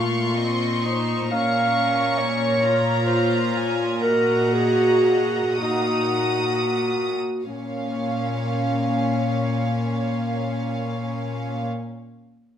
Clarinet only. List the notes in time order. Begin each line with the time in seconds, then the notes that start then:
Already playing: F4
1.31 F5
2.19 C#5
3.07 C5
4.02 A#4
4.53 G#4
5.59 F#4
7.46 C#4